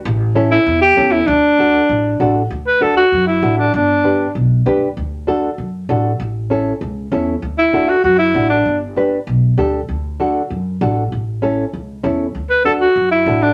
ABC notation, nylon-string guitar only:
X:1
M:4/4
L:1/8
Q:1/4=195
K:D
V:1 name="Nylon-string guitar"
z2 [CEA] z3 [CEA] z | z2 [DFA] z3 [DFA] z | z2 [DFA] z3 [DFA] z | z2 [DGB] z3 [DGB] z |
z2 [DFA] z3 [DFA] z | z2 [CEA] z3 [CEA] z | z2 [DFA] z3 [DFA] z | z2 [DGB] z3 [DGA] z |
z2 [DFA] z3 [DFA] z | z2 [CEA] z3 [CEA] z | z2 [DFA] z3 [DFA] z |]